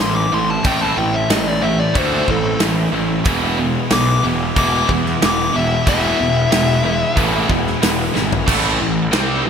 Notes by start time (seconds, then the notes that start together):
0.00 A1 A2 E3 A3 C4 E4 C6
0.16 D6
0.32 A1 A2 E3 A3 C4 E4 C6
0.50 A5
0.64 A1 A2 E3 A3 C4 E4 G5, kick, open hi-hat
0.82 A5
0.97 A1 A2 E3 G5
1.14 E5
1.30 A1 A2 E3 A3 C4 E4 D#5, snare, open hi-hat
1.48 D5
1.62 A2 E3 A3 C4 E4 E5
1.80 D5
1.94 D2 A2 E3 A3 C4 E4 C5, kick, open hi-hat
2.28 A1 A2 E3 A4, kick
2.60 A1 A2 E3 A3 C4 E4, snare, open hi-hat
2.93 A1 A2 E3 A3 C4 E4
3.25 E1 E2 B2 E3 G#3 B3 E4, kick, open hi-hat
3.59 E2 B2
3.90 B1 E2 B2 E3 G#3 B3 E4 D6, snare, open hi-hat
4.23 E1 E2 B2 E3 G#3 B3 E4
4.56 E1 E2 B2 E3 G#3 B3 E4 D6, kick, open hi-hat
4.89 E2 B2, kick
5.06 snare
5.21 E1 E2 B2 E3 G#3 B3 E4, snare, open hi-hat
5.26 D6
5.54 E1 E2 B2 E3 G#3 B3 E4 E5
5.87 E1 E2 B2 E3 G#3 B3 E4 E5, kick, open hi-hat
6.20 E1 E2 B2
6.51 E1 E2 B2 E3 G#3 B3 E4, snare, open hi-hat
6.83 E2 B2 E3 G#3 B3 E4
7.16 A1 E2 B2 E3 G#3 B3 E4, kick, open hi-hat
7.49 E1 E2 B2, kick
7.67 snare
7.81 E1 E2 B2 E3 G#3 B3 E4, snare, open hi-hat
8.13 G#1 E2 B2 E3 G#3 B3 E4, snare
8.32 floor tom
8.46 A1 A2 E3 A3, kick, crash
8.79 A1 A2 E3
9.11 C2 C3 G3 C4, snare, crash
9.45 A2 E3